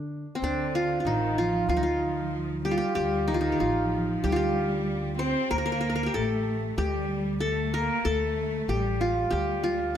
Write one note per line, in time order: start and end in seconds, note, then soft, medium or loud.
0.00 0.24 D3 loud
0.00 0.43 D4 medium
0.35 1.95 C4 medium
0.42 0.97 D2 medium
0.42 1.02 D3 medium
0.42 1.13 D4 medium
0.75 1.00 F4 medium
1.00 1.38 F4 medium
1.05 1.60 A1 medium
1.05 1.38 D#3 medium
1.05 1.76 D#4 medium
1.38 1.68 F3 medium
1.38 1.69 F4 medium
1.69 2.78 D2 medium
1.69 1.81 F3 medium
1.69 1.82 F4 medium
1.77 3.21 D#4 medium
1.83 2.61 F3 medium
1.83 2.71 F4 medium
2.64 2.94 G3 medium
2.64 2.77 G4 medium
2.71 3.34 F4 medium
2.78 2.95 G4 medium
2.95 3.51 D2 medium
2.95 3.26 G3 medium
2.95 3.52 G4 medium
3.28 3.41 D#3 medium
3.28 3.40 D#4 medium
3.34 3.60 F4 medium
3.41 3.59 D#3 medium
3.41 4.85 D#4 medium
3.52 4.23 G4 medium
3.60 4.15 A1 medium
3.60 4.24 F3 medium
3.60 4.32 F4 medium
4.24 5.33 D2 medium
4.24 4.36 G3 medium
4.24 4.36 G4 medium
4.32 5.67 F4 medium
4.32 5.62 G4 medium
4.38 5.15 G3 medium
5.19 5.51 C4 medium
5.19 6.25 C5 medium
5.51 6.06 D2 medium
5.51 6.16 A#3 medium
5.51 5.58 A#4 loud
5.58 5.65 A#4 medium
5.66 5.72 A#4 medium
5.72 5.80 A#4 medium
5.81 5.89 A#4 medium
5.90 5.95 A#4 medium
5.96 6.03 A#4 medium
6.03 6.78 G4 medium
6.03 6.20 A#4 medium
6.14 6.70 A1 medium
6.14 6.79 A3 medium
6.14 7.31 A4 medium
6.78 7.88 D2 loud
6.78 7.39 G3 medium
6.78 8.03 G4 medium
7.40 7.74 A3 medium
7.40 7.80 A4 medium
7.74 8.06 A#3 medium
7.74 8.11 A#4 medium
8.05 8.60 D2 medium
8.05 8.70 A3 medium
8.05 9.22 A4 medium
8.68 9.24 A1 medium
8.68 9.33 G3 medium
8.68 9.30 G4 medium
9.01 9.63 F4 medium
9.31 9.97 D2 loud
9.31 9.94 G3 medium
9.31 9.97 G4 medium
9.64 9.97 F4 medium